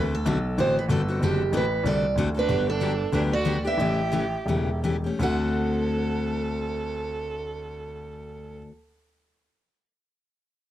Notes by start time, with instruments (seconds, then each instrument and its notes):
Already playing: grand piano D2, steel-string acoustic guitar D3 A3 C4 F#4 A4
0.15 steel-string acoustic guitar A4
0.26 grand piano B1, steel-string acoustic guitar D3 A3 C4 F#4 A4
0.58 grand piano A1, steel-string acoustic guitar D3 A3 C4 F#4 A4 C5
0.79 steel-string acoustic guitar B4
0.89 grand piano G1, steel-string acoustic guitar D3 A3 C4 F#4 A4
1.08 steel-string acoustic guitar C4 F#4 A4
1.20 grand piano F#1, steel-string acoustic guitar D3 A3 C4 F#4 G4 A4
1.52 grand piano A1, steel-string acoustic guitar D3 A3 C4 F#4 A4
1.57 steel-string acoustic guitar B4
1.84 grand piano C2, steel-string acoustic guitar D3 A3 C4 F#4 A4 D5
2.16 grand piano D2, steel-string acoustic guitar D3 A3 C4 F#4 A4
2.35 steel-string acoustic guitar C4 F#4 A4
2.39 violin D4, steel-string acoustic guitar B4
2.48 grand piano G1, steel-string acoustic guitar D3 F#3 B3 D4 G4
2.70 violin D4, steel-string acoustic guitar A4
2.80 steel-string acoustic guitar D3 F#3 B3 D4 G4
3.12 grand piano D2, steel-string acoustic guitar D3 F#3 B3 D4 G4 B4, violin D4
3.33 violin F#4, steel-string acoustic guitar D5
3.45 steel-string acoustic guitar D3 F#3 B3 D4 G4
3.65 steel-string acoustic guitar B3 D4 G4 E5, violin G4
3.77 grand piano A1, steel-string acoustic guitar C#3 E3 A3 C#4 G4
4.12 steel-string acoustic guitar C#3 E3 A3 C#4 G4
4.46 grand piano E1, steel-string acoustic guitar C#3 E3 A3 C#4 G4
4.84 steel-string acoustic guitar C#3 E3 A3 C#4 G4
5.04 steel-string acoustic guitar A3 C#4 G4
5.19 grand piano D2, steel-string acoustic guitar D3 A3 C4 F#4 F#5, violin A4
5.23 steel-string acoustic guitar A4